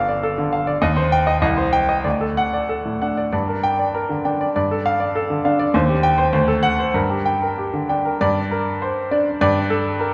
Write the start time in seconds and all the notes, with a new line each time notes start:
Already playing: G1 A4 D5 F5
0.09 D5
0.23 A4
0.38 D3
0.53 F5
0.67 D5
0.82 D#2 D#5
0.96 C5
1.12 G5
1.27 D#5
1.42 C2 D#5
1.57 C5
1.73 G5
1.89 D#5
2.04 D2 D5
2.21 A4
2.37 F#5
2.53 D5
2.69 A4
2.85 A2
3.02 D4 F#5
3.17 D5
3.32 G2 D5
3.48 A#4
3.63 G5
3.79 D5
3.95 A#4
4.09 D3
4.25 D4 G5
4.41 D5
4.56 G2 D5
4.71 A4
4.86 F5
5.00 D5
5.15 A4
5.30 D3
5.45 D4 F5
5.59 D5
5.74 D#2 C5
5.89 G4
6.03 G5
6.18 C5
6.33 D2 C5
6.48 A4
6.63 F#5
6.79 C5
6.94 G2 A#4
7.10 G4
7.26 G5
7.42 A#4
7.58 G4
7.74 D3
7.89 D4 G5
8.05 A#4
8.21 G2 D5
8.51 A#4
8.82 C5
9.11 D4 D5
9.41 G2 D5
9.70 A4
10.00 A#4